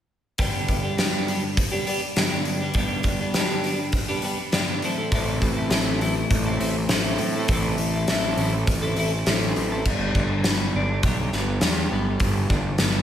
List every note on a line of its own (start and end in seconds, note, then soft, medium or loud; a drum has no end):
0.38 0.96 G2 medium
0.38 0.97 D3 medium
0.38 0.85 G3 medium
0.38 0.84 B3 medium
0.38 0.83 D4 medium
0.38 0.82 G4 medium
0.38 kick medium
0.38 open hi-hat medium
0.68 kick medium
0.68 open hi-hat soft
0.83 0.98 G3 soft
0.83 0.98 B3 soft
0.83 0.98 D4 medium
0.83 0.99 G4 medium
0.97 1.57 G2 medium
0.97 1.57 D3 medium
0.97 1.25 G3 medium
0.97 1.27 B3 medium
0.97 1.28 D4 medium
0.97 1.29 G4 medium
0.97 snare medium
0.97 open hi-hat medium
1.27 1.42 G3 medium
1.27 1.42 B3 medium
1.27 1.42 D4 medium
1.27 1.42 G4 medium
1.27 open hi-hat soft
1.43 muted clean electric guitar stroke soft
1.57 kick medium
1.57 open hi-hat medium
1.72 1.85 G3 soft
1.72 1.86 B3 medium
1.72 1.87 D4 medium
1.72 1.88 G4 medium
1.86 2.01 G3 medium
1.86 2.01 B3 medium
1.86 2.00 D4 medium
1.86 2.00 G4 medium
1.86 open hi-hat soft
2.02 muted clean electric guitar stroke soft
2.16 2.74 G2 medium
2.16 2.75 D3 medium
2.16 2.62 G3 medium
2.16 2.61 B3 medium
2.16 2.60 D4 medium
2.16 2.59 G4 medium
2.16 snare medium
2.16 open hi-hat medium
2.45 open hi-hat soft
2.60 2.76 G3 soft
2.60 2.76 B3 soft
2.60 2.76 D4 soft
2.60 2.77 G4 soft
2.74 3.33 G2 medium
2.74 3.34 D3 medium
2.74 3.21 G3 medium
2.74 3.21 B3 medium
2.74 3.20 D4 medium
2.74 kick loud
2.74 open hi-hat medium
2.78 3.19 G4 medium
3.03 kick medium
3.03 open hi-hat soft
3.20 3.35 G3 soft
3.20 3.35 B3 medium
3.20 3.36 D4 medium
3.20 3.36 G4 soft
3.34 3.94 G2 medium
3.34 3.94 D3 medium
3.34 3.62 G3 medium
3.34 3.64 B3 medium
3.34 3.65 D4 medium
3.34 3.65 G4 medium
3.34 snare medium
3.34 open hi-hat soft
3.64 3.79 G3 medium
3.64 3.79 B3 medium
3.64 3.79 D4 medium
3.64 3.79 G4 medium
3.64 open hi-hat soft
3.80 muted clean electric guitar stroke soft
3.92 kick medium
3.92 open hi-hat medium
4.08 4.22 G3 soft
4.08 4.23 B3 medium
4.08 4.23 D4 medium
4.08 4.24 G4 medium
4.22 4.39 G3 medium
4.22 4.38 B3 medium
4.22 4.38 D4 medium
4.22 4.38 G4 medium
4.22 open hi-hat soft
4.39 muted clean electric guitar stroke soft
4.52 4.81 G2 medium
4.52 4.81 D3 medium
4.52 4.81 G3 medium
4.52 4.81 B3 medium
4.52 4.82 D4 medium
4.52 4.82 G4 medium
4.52 snare medium
4.52 open hi-hat soft
4.82 5.12 A2 medium
4.82 5.13 E3 medium
4.82 5.00 C4 medium
4.82 4.99 E4 medium
4.82 4.97 A4 medium
4.82 open hi-hat soft
4.98 5.13 C4 soft
4.98 5.14 E4 medium
4.98 5.15 A4 medium
5.12 5.38 A1 medium
5.12 5.70 A2 medium
5.12 5.70 E3 medium
5.12 5.59 C4 medium
5.12 5.57 E4 medium
5.12 5.56 A4 medium
5.12 kick loud
5.12 open hi-hat medium
5.42 5.68 A1 medium
5.42 kick medium
5.42 open hi-hat soft
5.57 5.71 C4 soft
5.57 5.72 E4 medium
5.57 5.73 A4 medium
5.71 6.23 A1 medium
5.71 6.91 A2 medium
5.71 6.00 E3 medium
5.71 6.01 C4 medium
5.71 6.02 E4 medium
5.71 6.03 A4 medium
5.71 snare medium
5.71 open hi-hat medium
6.00 6.16 E3 medium
6.00 6.15 C4 medium
6.00 6.15 E4 medium
6.00 6.15 A4 medium
6.00 open hi-hat soft
6.16 muted clean electric guitar stroke soft
6.31 6.57 A1 medium
6.31 kick medium
6.31 open hi-hat medium
6.46 6.60 C4 medium
6.46 6.60 E4 medium
6.46 6.61 A4 medium
6.59 6.86 A1 medium
6.59 6.77 E3 medium
6.59 6.76 C4 medium
6.59 6.76 E4 medium
6.59 6.76 A4 medium
6.59 open hi-hat soft
6.77 muted clean electric guitar stroke soft
6.89 7.16 A1 medium
6.89 7.48 A2 medium
6.89 7.49 E3 medium
6.89 7.37 C4 medium
6.89 snare medium
6.89 open hi-hat medium
6.93 7.36 E4 medium
6.93 7.34 A4 medium
7.18 7.45 A2 medium
7.18 open hi-hat soft
7.36 7.51 C4 medium
7.36 7.51 E4 medium
7.36 7.51 A4 medium
7.48 7.75 A1 medium
7.48 8.08 A2 medium
7.48 8.09 E3 medium
7.48 7.95 C4 medium
7.48 7.94 E4 medium
7.48 kick loud
7.48 open hi-hat medium
7.53 7.93 A4 medium
7.78 8.04 A1 medium
7.78 open hi-hat soft
7.94 8.09 C4 soft
7.94 8.10 E4 soft
7.94 8.11 A4 medium
8.08 8.34 A1 medium
8.08 8.68 A2 medium
8.08 8.37 E3 medium
8.08 8.38 C4 medium
8.08 8.39 E4 medium
8.08 snare medium
8.08 open hi-hat medium
8.12 8.40 A4 medium
8.37 8.63 A1 medium
8.37 8.54 E3 medium
8.37 8.54 C4 medium
8.37 8.54 E4 medium
8.37 open hi-hat soft
8.42 8.53 A4 medium
8.54 muted clean electric guitar stroke soft
8.67 8.93 A1 medium
8.67 kick loud
8.67 open hi-hat medium
8.82 8.97 C4 medium
8.82 8.98 E4 medium
8.82 8.98 A4 medium
8.96 9.22 A1 medium
8.96 9.12 E3 medium
8.96 9.12 C4 medium
8.96 9.12 E4 medium
8.96 9.11 A4 medium
8.96 open hi-hat soft
9.12 muted clean electric guitar stroke soft
9.26 9.52 A1 medium
9.26 9.84 A2 medium
9.26 9.84 E3 medium
9.26 9.73 C4 medium
9.26 9.72 E4 medium
9.26 snare medium
9.26 open hi-hat medium
9.31 9.71 A4 medium
9.56 9.82 A1 medium
9.56 open hi-hat soft
9.72 9.85 C4 soft
9.72 9.85 E4 medium
9.72 9.84 A4 soft
9.85 10.10 G1 medium
9.85 11.34 G2 medium
9.85 kick medium
9.85 crash medium
10.15 10.39 G1 medium
10.15 11.63 D3 medium
10.15 kick medium
10.44 10.69 G1 medium
10.44 11.33 B3 medium
10.44 snare medium
10.44 open hi-hat soft
10.74 10.99 G1 medium
10.74 12.22 D4 medium
11.03 11.28 B1 medium
11.03 11.63 G3 medium
11.03 kick medium
11.03 open hi-hat soft
11.33 11.57 G1 medium
11.33 11.92 B3 medium
11.33 snare soft
11.61 11.87 E2 medium
11.61 13.02 G3 medium
11.61 snare medium
11.61 open hi-hat soft
11.91 12.16 G1 medium
11.91 12.81 B3 soft
12.20 12.46 G1 medium
12.20 13.02 G2 medium
12.20 kick loud
12.20 open hi-hat soft
12.50 12.75 G1 medium
12.50 13.02 D3 medium
12.50 kick medium
12.78 13.02 G1 medium
12.78 13.02 B3 medium
12.78 snare medium
12.78 open hi-hat soft